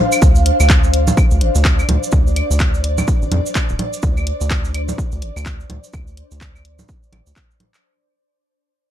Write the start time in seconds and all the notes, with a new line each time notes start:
Already playing: D4 C5 F5
0.12 cabasa, claves
0.22 D2, kick, cabasa
0.35 cabasa
0.46 closed hi-hat
0.60 D2, cabasa, claves
0.65 D5
0.70 kick, clap, cabasa
0.84 cabasa
0.94 closed hi-hat
1.07 low conga, cabasa
1.17 kick, cabasa, claves
1.31 D2, cabasa
1.41 A1, closed hi-hat
1.55 D2, cabasa
1.65 kick, clap, cabasa
1.79 cabasa, claves
1.89 D2, closed hi-hat, low conga
2.03 cabasa
2.12 D2, kick, cabasa
2.27 cabasa
2.36 closed hi-hat, claves
2.50 D2, cabasa
2.60 kick, clap, cabasa
2.74 cabasa
2.84 closed hi-hat
2.98 low conga, cabasa, claves
3.08 kick, cabasa
3.22 A1, cabasa
3.32 F2, closed hi-hat, low conga
3.46 cabasa
3.55 kick, clap, cabasa, claves
3.69 D1, cabasa
3.79 closed hi-hat, low conga
3.93 cabasa
4.02 D2, kick, cabasa
4.17 cabasa, claves
4.27 closed hi-hat
4.41 D2, cabasa
4.50 kick, clap, cabasa
4.65 cabasa
4.74 closed hi-hat, claves
4.89 low conga, cabasa
4.98 kick, cabasa
5.12 D2, cabasa
5.22 A1, closed hi-hat
5.36 D2, cabasa, claves
5.46 kick, clap, cabasa
5.60 cabasa
5.70 D2, closed hi-hat, low conga
5.84 cabasa
5.93 D2, kick, cabasa, claves
6.07 cabasa
6.17 closed hi-hat
6.31 D2, cabasa
6.41 kick, clap, cabasa
6.55 cabasa, claves
6.65 closed hi-hat
6.79 low conga, cabasa
6.89 kick, cabasa
7.03 cabasa
7.12 A1, closed hi-hat, low conga, claves
7.27 D2, cabasa
7.36 kick, clap, cabasa
7.51 cabasa
7.60 closed hi-hat, low conga
7.74 clap, cabasa, claves